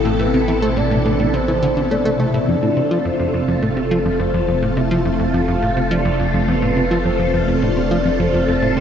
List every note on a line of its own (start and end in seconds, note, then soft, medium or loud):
0.00 2.45 A1 medium
0.00 2.44 B2 medium
0.00 2.44 C3 medium
0.00 2.44 E3 medium
0.00 0.21 A4 loud
0.00 2.44 A4 loud
0.05 0.13 A2 medium
0.19 0.27 A2 medium
0.19 0.62 B4 loud
0.34 0.41 C3 medium
0.48 0.53 E3 medium
0.62 0.70 A3 loud
0.62 0.79 C5 loud
0.77 0.81 A2 medium
0.77 1.36 D5 loud
0.91 0.98 A2 medium
1.05 1.13 A2 medium
1.20 1.27 A2 medium
1.34 1.41 C3 medium
1.34 1.93 C5 loud
1.48 1.53 E3 medium
1.63 1.67 D3 loud
1.77 1.81 D3 medium
1.91 1.95 A3 medium
1.91 2.21 D5 loud
2.05 2.10 A3 loud
2.20 2.27 A3 medium
2.20 2.48 E5 loud
2.34 2.38 A2 medium
2.48 8.80 F1 medium
2.48 2.56 F2 medium
2.48 8.80 C3 medium
2.48 8.80 A3 medium
2.48 8.80 F4 medium
2.48 8.80 A4 medium
2.48 3.07 D5 loud
2.62 2.70 A2 medium
2.77 2.81 C3 medium
2.91 2.98 F3 medium
3.05 3.10 F2 medium
3.05 3.64 C5 loud
3.19 3.27 F2 medium
3.34 3.41 F2 medium
3.48 3.55 F2 medium
3.62 3.70 A2 medium
3.62 4.21 A4 loud
3.77 3.81 C3 medium
3.91 3.98 F3 loud
4.05 4.10 F2 medium
4.20 4.27 F2 medium
4.20 4.79 C5 loud
4.34 4.41 F2 medium
4.48 4.56 F2 medium
4.62 4.70 A2 medium
4.77 4.81 C3 medium
4.77 5.36 E5 loud
4.91 4.98 F3 loud
5.05 5.10 F2 medium
5.19 5.27 F2 medium
5.34 5.41 F2 medium
5.34 5.93 F5 loud
5.48 5.55 F2 medium
5.62 5.70 A2 medium
5.77 5.81 C3 medium
5.91 5.98 F3 loud
5.91 6.50 D5 loud
6.05 6.10 F2 medium
6.19 6.27 F2 medium
6.34 6.41 F2 medium
6.48 6.55 F2 medium
6.48 7.05 B4 loud
6.62 6.70 A2 medium
6.77 6.81 C3 medium
6.91 6.98 F3 loud
7.05 7.10 F2 medium
7.05 7.64 C5 loud
7.19 7.27 F2 medium
7.34 7.41 F2 medium
7.48 7.55 F2 medium
7.62 7.70 A2 medium
7.62 8.22 D5 loud
7.77 7.81 C3 medium
7.91 7.98 F3 loud
8.05 8.10 F2 medium
8.20 8.27 F2 medium
8.20 8.79 C5 loud
8.34 8.41 F2 medium
8.48 8.55 F2 medium
8.62 8.70 A2 medium
8.77 8.80 C3 medium
8.77 8.80 B4 loud